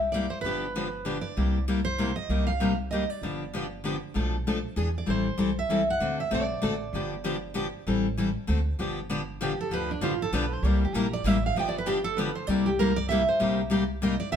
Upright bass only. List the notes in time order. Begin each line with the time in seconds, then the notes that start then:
Already playing: C2
0.44 G1
1.37 C2
2.29 C2
3.22 G1
4.15 B1
4.77 E2
5.07 A1
5.38 B1
5.69 C2
6.00 D2
6.31 B1
6.63 A1
6.93 G1
7.87 A1
8.49 D2
8.79 G1
9.70 D2
10.01 A1
10.32 B1
10.63 C2
10.93 A#1
11.24 A1
11.55 G1
12.48 C2
13.41 C2